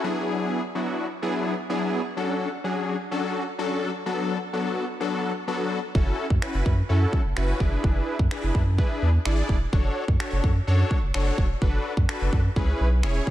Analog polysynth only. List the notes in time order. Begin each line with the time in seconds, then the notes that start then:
0.04 F#3 B3 D4 E4 G#4
0.75 F#3 B3 D4 E4 F#4
1.22 F#3 B3 D4 E4 G#4
1.70 F#3 B3 D4 E4 G#4
2.17 F#3 C#4 D4 F#4 A4
2.64 F#3 C#4 D4 F#4 G#4
3.11 F#3 C#4 D4 F#4 A4
3.58 F#3 C#4 D4 F#4 A4
4.06 F#3 B3 D4 F#4 A4
4.53 F#3 B3 D4 F#4 A4
5.00 F#3 B3 D4 F#4 A4
5.47 F#3 B3 D4 F#4 A4
5.95 C#4 E4 F#4 A4
6.42 C#4 E4 F#4 B4
6.89 C#4 E4 F#4 A4
7.36 C#4 E4 F#4 B4
7.60 D4 E4 G#4 B4
8.31 D4 E4 G#4 B4
8.78 D4 E4 G#4 B4
9.25 D4 E4 G#4 D5
9.73 D4 F#4 A4 C#5
10.20 D4 F#4 A4 C#5
10.67 D4 F#4 A4 C#5
11.14 D4 F#4 A4 C#5
11.62 D4 F#4 A4 B4
12.09 D4 F#4 A4 B4
12.56 C#4 E4 G#4 B4
13.03 C#4 E4 G#4 C#5